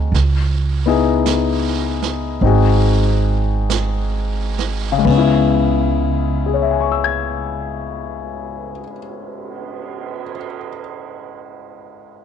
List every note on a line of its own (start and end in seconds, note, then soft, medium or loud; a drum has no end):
0.00 0.14 C4 soft
0.00 0.14 D#4 soft
0.00 0.14 F#4 soft
0.00 0.14 G#4 soft
0.12 2.37 C#2 medium
0.12 brush sweep soft
0.12 snare soft
0.86 2.42 B3 soft
0.86 2.41 D#4 soft
0.86 2.43 E4 soft
0.86 2.43 G#4 soft
1.26 brush sweep soft
1.26 snare soft
1.26 hi-hat pedal soft
2.02 snare soft
2.41 5.00 G#1 medium
2.41 5.05 C4 soft
2.41 5.05 D#4 soft
2.41 brush sweep soft
2.45 5.06 F#4 soft
2.45 5.07 G#4 soft
3.70 brush sweep soft
3.70 snare soft
3.70 hi-hat pedal soft
4.59 snare soft
4.92 8.71 C#3 medium
4.98 8.77 G#3 soft
5.05 8.80 C#2 medium
5.05 8.84 B3 soft
5.05 kick soft
5.05 ride soft
5.11 8.90 C#4 soft
5.18 8.97 E4 medium
6.00 cymbal swell soft
6.46 10.21 G#4 soft
6.54 10.29 C#5 soft
6.62 10.37 E5 soft
6.71 10.46 G#5 soft
6.81 10.56 C#6 soft
6.92 10.67 E6 soft
7.04 10.79 G#6 soft